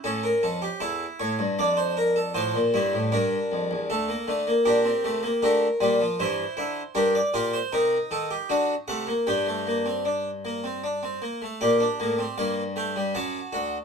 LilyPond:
<<
  \new Staff \with { instrumentName = "Harpsichord" } { \time 3/4 \key f \major \tempo 4 = 78 << { a'16 bes'16 a'16 g'16 a'8 cis''8 d''16 c''16 bes'16 a'16 | c''4 bes'4 a'4 | g'4 bes'4 c''4 | \key g \minor bes'16 d''16 bes'16 c''16 bes'8 a'16 g'16 fis'8 fis''8 |
g''2~ g''8 r8 | d''4 f''8 g''8 a''4 | } \\ { cis'4 e'4 d'4 | f'8 e'8 d'2 | bes'4 g'8 f'8 e'4 | g'8 f'8 r2 |
d'2~ d'8 r8 | g'2 fis'4 | } >> }
  \new Staff \with { instrumentName = "Harpsichord" } { \clef bass \time 3/4 \key f \major << { r2. | f8 g4. a16 bes16 a16 bes16 | d'16 c'16 a16 bes16 a8 g16 f16 e8 e'8 | \key g \minor d'8 g'8 ees'4 d'8 a16 bes16 |
g16 a16 bes16 c'16 d'8 bes16 c'16 d'16 c'16 bes16 a16 | bes16 d'16 bes16 c'16 bes8 a16 g16 fis8 fis'8 | } \\ { a,8 f,8 e,8 a,16 g,16 f,4 | a,16 bes,16 g,16 a,16 g,8 f,16 e,16 d,8 d8 | bes,8 c8 d8 bes,8 g,8 d8 | g,8 bes,8 c8 ees8 d8 c8 |
g,2~ g,8 r8 | bes,8 a,8 g,4 fis,8 d,8 | } >> }
>>